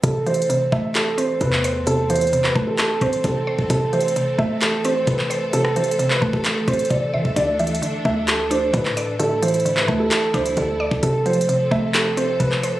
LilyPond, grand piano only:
\new Staff \with { instrumentName = "Grand piano" } { \time 4/4 \key a \minor \tempo 4 = 131 a'8 c''4 e''8 a'8 c''8 b'4 | a'8 c''8. b'8 a'16 a'8 c''8 a'4 | a'8 c''4 e''8 a'8 c''8 b'4 | a'8 c''8. b'8 a'16 a'8 c''8 d''8 e''8 |
d''8 e''4 e''8 a'8 c''8 b'4 | a'8 c''8. b'8 a'16 a'8 c''8 a'4 | a'8 c''4 e''8 a'8 c''8 b'4 | }